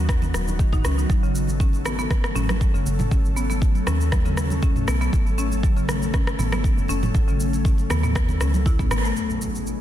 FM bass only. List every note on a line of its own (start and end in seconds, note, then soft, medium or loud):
0.00 0.33 D#2 medium
0.34 0.81 D#1 medium
0.85 1.05 C#2 medium
1.10 2.07 G#1 loud
2.36 2.70 G#1 medium
2.74 2.84 F#1 loud
2.86 3.07 F#1 medium
3.11 3.84 G#1 loud
3.87 4.84 D#2 medium
4.88 5.09 B1 medium
5.13 6.10 G#1 loud
6.39 6.74 G#1 medium
6.78 6.87 F#1 loud
6.89 7.10 F#1 medium
7.15 7.87 G#1 loud
7.90 8.40 D#2 medium
8.41 8.88 C#2 medium
8.91 9.12 G#1 loud